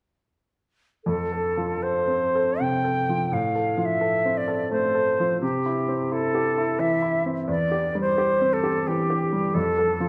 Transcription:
1.05 3.28 F2 soft
1.05 1.84 A4 soft
1.32 1.72 A4 soft
1.57 1.98 F3 soft
1.83 2.25 A4 soft
1.83 2.63 C5 soft
2.07 2.50 C4 soft
2.35 2.76 A4 soft
2.60 2.99 C3 soft
2.60 3.35 G5 soft
2.84 3.22 A4 soft
3.09 3.32 F3 soft
3.32 5.38 A2 soft
3.32 3.87 F5 soft
3.55 3.92 A4 soft
3.77 4.15 F3 soft
3.85 4.39 E5 soft
4.01 4.39 A4 soft
4.25 4.63 C4 soft
4.37 4.72 D5 soft
4.48 4.85 A4 soft
4.71 5.09 A3 soft
4.71 5.41 C5 soft
4.95 5.32 A4 soft
5.20 5.42 F3 soft
5.42 7.44 C3 soft
5.42 6.14 G4 soft
5.66 6.03 E4 soft
5.88 6.25 C4 soft
6.12 6.48 E4 soft
6.12 6.81 A4 medium
6.35 6.71 G4 soft
6.58 6.94 E4 soft
6.79 7.16 E3 soft
6.79 7.24 E5 soft
7.02 7.39 E4 soft
7.26 7.49 C4 soft
7.47 9.51 E2 soft
7.47 7.97 D5 soft
7.72 8.08 G4 soft
7.95 8.32 G3 soft
8.01 8.55 C5 soft
8.18 8.55 G4 soft
8.41 8.78 C4 soft
8.53 8.89 A4 soft
8.64 9.01 G4 soft
8.87 9.24 E3 soft
8.87 9.56 G4 soft
9.10 9.46 G4 soft
9.32 9.55 G3 soft
9.54 10.09 F2 soft
9.54 10.09 A4 medium
9.78 10.09 A4 soft
10.00 10.09 F3 soft

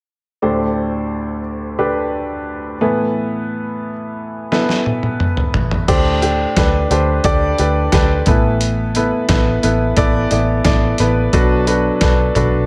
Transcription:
0.42 2.78 D2 medium
0.42 2.78 A2 soft
0.42 1.39 D4 medium
0.42 1.39 G4 medium
0.42 1.39 A4 medium
0.42 1.39 C5 medium
1.79 2.75 D4 medium
1.79 2.75 G4 medium
1.79 2.75 A4 medium
1.79 2.75 B4 medium
2.81 5.50 A2 medium
2.81 5.50 E3 medium
2.81 3.90 B3 medium
2.81 3.91 E4 medium
2.81 3.91 A4 medium
2.81 3.91 B4 medium
4.52 5.48 B3 medium
4.52 5.49 E4 medium
4.52 5.49 A4 medium
4.52 5.48 B4 medium
4.52 snare soft
4.69 snare soft
4.86 high tom medium
5.03 high tom soft
5.20 mid tom medium
5.37 mid tom medium
5.54 floor tom medium
5.71 floor tom medium
5.88 6.44 D2 medium
5.88 6.87 A2 medium
5.88 6.13 D4 medium
5.88 6.13 G4 medium
5.88 6.13 A4 medium
5.88 6.13 C5 medium
5.88 kick medium
5.88 closed hi-hat medium
5.88 crash medium
6.22 6.47 D4 medium
6.22 6.47 G4 medium
6.22 6.47 A4 medium
6.22 6.47 C5 medium
6.22 closed hi-hat medium
6.57 6.85 D2 medium
6.57 6.81 D4 medium
6.57 6.81 G4 medium
6.57 6.81 A4 medium
6.57 6.81 B4 medium
6.57 kick medium
6.57 snare medium
6.57 closed hi-hat medium
6.91 7.19 D2 medium
6.91 7.15 D4 medium
6.91 7.15 G4 medium
6.91 7.15 A4 medium
6.91 7.15 C5 medium
6.91 closed hi-hat medium
7.24 7.53 D2 medium
7.24 7.49 D4 medium
7.24 7.49 G4 medium
7.24 7.49 A4 medium
7.24 7.49 D5 loud
7.24 kick medium
7.24 closed hi-hat medium
7.58 7.87 D2 medium
7.58 7.83 D4 medium
7.58 7.83 G4 medium
7.58 7.83 A4 medium
7.58 7.83 B4 medium
7.58 closed hi-hat medium
7.92 8.21 D2 loud
7.92 8.17 D4 medium
7.92 8.17 G4 medium
7.92 8.17 A4 medium
7.92 8.17 B4 medium
7.92 kick loud
7.92 snare medium
7.92 closed hi-hat medium
8.26 9.11 A1 medium
8.26 9.25 A2 medium
8.26 9.26 E3 medium
8.26 8.82 B3 medium
8.26 8.82 E4 medium
8.26 8.82 A4 medium
8.26 8.82 B4 medium
8.26 kick medium
8.26 closed hi-hat medium
8.61 closed hi-hat medium
8.95 9.20 B3 medium
8.95 9.20 E4 medium
8.95 9.20 A4 medium
8.95 9.20 B4 medium
8.95 closed hi-hat medium
9.29 9.57 A1 medium
9.29 9.53 B3 medium
9.29 9.53 E4 medium
9.29 9.53 A4 medium
9.29 9.54 B4 medium
9.29 kick medium
9.29 snare medium
9.29 closed hi-hat medium
9.63 9.91 A1 medium
9.63 9.87 B3 medium
9.63 9.87 E4 medium
9.63 9.88 A4 medium
9.63 9.87 B4 medium
9.63 closed hi-hat medium
9.97 10.25 A1 medium
9.97 10.21 B3 medium
9.97 10.21 E4 medium
9.97 10.21 A4 medium
9.97 10.21 D5 loud
9.97 kick medium
9.97 closed hi-hat medium
10.31 10.59 A1 medium
10.31 10.55 B3 medium
10.31 10.55 E4 medium
10.31 10.55 A4 medium
10.31 10.55 D5 medium
10.31 closed hi-hat medium
10.65 10.93 A1 medium
10.65 10.89 B3 medium
10.65 10.89 E4 medium
10.65 10.89 A4 medium
10.65 10.89 D5 medium
10.65 kick loud
10.65 snare medium
10.65 closed hi-hat medium
10.98 11.27 A1 medium
10.98 11.24 B3 medium
10.98 11.24 E4 medium
10.98 11.24 A4 medium
10.98 11.24 B4 medium
10.98 closed hi-hat medium
11.33 11.89 B1 medium
11.33 12.31 B2 medium
11.33 12.31 F#3 medium
11.33 11.57 D4 medium
11.33 11.57 F#4 medium
11.33 11.57 A4 medium
11.33 11.58 B4 medium
11.33 kick loud
11.33 closed hi-hat medium
11.67 11.91 D4 medium
11.67 11.91 F#4 medium
11.67 11.91 A4 medium
11.67 11.92 B4 medium
11.67 closed hi-hat medium
12.01 12.29 B1 medium
12.01 12.26 D4 medium
12.01 12.26 F#4 medium
12.01 12.26 A4 medium
12.01 12.26 B4 medium
12.01 kick loud
12.01 snare medium
12.01 closed hi-hat medium
12.35 12.63 B1 medium
12.35 12.60 D4 medium
12.35 12.59 F#4 medium
12.35 12.60 A4 medium
12.35 12.60 B4 medium
12.35 closed hi-hat medium
12.35 floor tom medium

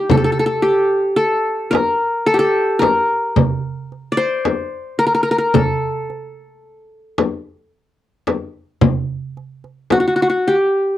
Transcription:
0.00 0.39 D#4 medium
0.00 0.62 G4 soft
0.10 0.17 A4 medium
0.10 frame drum medium
0.10 darbuka dum medium
0.17 0.24 A4 medium
0.24 0.32 A4 medium
0.32 0.39 A4 medium
0.39 0.46 A4 medium
0.46 1.16 A4 medium
0.62 1.88 G4 medium
0.62 darbuka ka soft
1.16 1.77 A4 medium
1.71 2.32 A#4 medium
1.71 frame drum medium
1.75 darbuka tek medium
2.26 2.39 A4 medium
2.34 3.59 G4 medium
2.39 2.85 A4 medium
2.79 4.14 A#4 medium
2.79 darbuka tek medium
2.79 frame drum medium
3.36 frame drum medium
3.36 darbuka dum medium
3.92 darbuka ka soft
4.12 5.10 D5 medium
4.17 5.23 C5 medium
4.17 darbuka ka soft
4.45 darbuka tek medium
4.45 frame drum medium
4.99 5.06 A#4 medium
5.07 5.14 A#4 medium
5.15 5.23 A#4 medium
5.23 5.31 A#4 medium
5.31 5.38 A#4 medium
5.38 5.61 A#4 medium
5.54 7.69 A4 medium
5.54 frame drum medium
5.54 darbuka dum medium
6.10 darbuka ka soft
7.18 darbuka tek medium
7.18 frame drum medium
8.27 darbuka tek medium
8.27 frame drum medium
8.81 frame drum medium
8.81 darbuka dum medium
9.37 darbuka ka soft
9.64 darbuka ka soft
9.90 10.00 F#4 medium
9.90 darbuka tek medium
9.90 frame drum medium
10.00 10.07 F#4 medium
10.07 10.15 F#4 medium
10.16 10.22 F#4 medium
10.22 10.29 F#4 medium
10.30 10.54 F#4 medium
10.48 10.98 G4 medium

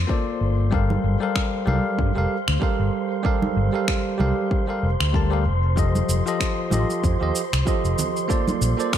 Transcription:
0.00 8.98 C5 medium
0.00 8.98 C6 medium
0.07 0.68 A#3 medium
0.07 0.68 F4 medium
0.07 0.69 A4 medium
0.07 0.69 C5 medium
0.07 0.70 D5 medium
0.07 kick loud
0.41 0.95 G1 medium
0.71 1.17 G3 medium
0.71 1.17 G4 medium
0.71 1.18 A4 medium
0.71 1.18 A#4 medium
0.71 1.18 F5 medium
0.71 kick loud
0.90 high conga medium
1.04 1.15 G1 medium
1.20 1.63 G3 medium
1.20 1.63 G4 medium
1.20 1.64 A4 medium
1.20 1.64 A#4 medium
1.20 1.64 F5 medium
1.36 finger snap medium
1.36 kick loud
1.65 1.78 C2 medium
1.65 2.11 G3 medium
1.65 2.12 G4 medium
1.65 2.12 A4 medium
1.65 2.12 A#4 medium
1.65 2.13 F5 medium
1.65 high conga medium
1.99 2.10 G2 medium
1.99 kick loud
2.15 2.25 F1 medium
2.15 2.35 G3 medium
2.15 2.35 G4 medium
2.15 2.36 A4 medium
2.15 2.36 A#4 medium
2.15 2.37 F5 medium
2.48 2.56 D2 medium
2.48 finger snap medium
2.60 3.21 G3 medium
2.60 3.21 G4 medium
2.60 3.21 A4 medium
2.60 3.22 A#4 medium
2.60 3.22 F5 medium
2.60 kick loud
2.79 2.88 G1 medium
3.23 3.69 G3 medium
3.23 3.69 G4 medium
3.23 3.70 A4 medium
3.23 3.70 A#4 medium
3.23 3.71 F5 medium
3.23 kick loud
3.42 high conga medium
3.56 3.67 G1 medium
3.72 4.15 G3 medium
3.72 4.16 G4 medium
3.72 4.16 A4 medium
3.72 4.17 A#4 medium
3.72 4.17 F5 medium
3.88 finger snap medium
3.88 kick loud
4.18 4.31 C2 medium
4.18 4.64 G3 medium
4.18 4.64 G4 medium
4.18 4.64 A4 medium
4.18 4.65 A#4 medium
4.18 4.65 F5 medium
4.18 high conga medium
4.51 kick loud
4.67 4.88 G3 medium
4.67 4.88 G4 medium
4.67 4.88 A4 medium
4.67 4.89 A#4 medium
4.67 4.89 F5 medium
4.83 4.94 F1 medium
5.00 5.47 D2 medium
5.00 finger snap medium
5.12 5.28 G3 medium
5.12 5.29 G4 medium
5.12 5.29 A4 medium
5.12 5.29 A#4 medium
5.12 5.30 A5 medium
5.12 kick loud
5.30 5.42 G3 medium
5.30 5.43 G4 medium
5.30 5.43 A4 medium
5.30 5.44 A#4 medium
5.30 5.44 F5 medium
5.45 6.00 F1 medium
5.76 6.22 F3 medium
5.76 6.22 F4 medium
5.76 6.23 G4 medium
5.76 6.23 A4 medium
5.76 6.23 D#5 medium
5.76 kick medium
5.76 shaker soft
5.95 high conga medium
5.95 shaker soft
6.08 6.20 F1 medium
6.08 shaker medium
6.25 6.68 F3 medium
6.25 6.69 F4 medium
6.25 6.69 G4 medium
6.25 6.69 A4 medium
6.25 6.70 D#5 medium
6.25 shaker soft
6.40 finger snap medium
6.40 kick medium
6.40 shaker soft
6.70 6.83 A1 medium
6.70 7.17 F3 medium
6.70 7.17 F4 medium
6.70 7.17 G4 medium
6.70 7.18 A4 medium
6.70 7.18 D#5 medium
6.70 high conga medium
6.70 shaker medium
6.90 shaker soft
7.04 7.15 F2 medium
7.04 kick loud
7.04 shaker soft
7.19 7.30 D#2 medium
7.19 7.40 F3 medium
7.19 7.40 F4 medium
7.19 7.41 G4 medium
7.19 7.41 A4 medium
7.19 7.42 D#5 medium
7.36 shaker medium
7.53 7.61 C2 medium
7.53 finger snap medium
7.53 shaker soft
7.65 8.26 F3 medium
7.65 8.26 F4 medium
7.65 8.27 G4 medium
7.65 8.27 A4 medium
7.65 8.28 D#5 medium
7.65 kick medium
7.65 shaker soft
7.84 7.93 F1 medium
7.84 shaker soft
7.99 low conga medium
7.99 shaker medium
8.17 shaker soft
8.28 8.74 A#3 medium
8.28 8.75 F4 medium
8.28 8.75 A4 medium
8.28 8.75 C5 medium
8.28 8.76 D5 medium
8.28 kick medium
8.28 shaker soft
8.48 high conga medium
8.48 shaker soft
8.61 8.72 A#1 medium
8.61 shaker medium
8.77 8.98 A#3 medium
8.77 8.98 F4 medium
8.77 8.98 A4 medium
8.77 8.98 C5 medium
8.77 8.98 D5 medium
8.77 shaker soft
8.93 finger snap medium
8.93 kick medium
8.93 shaker soft

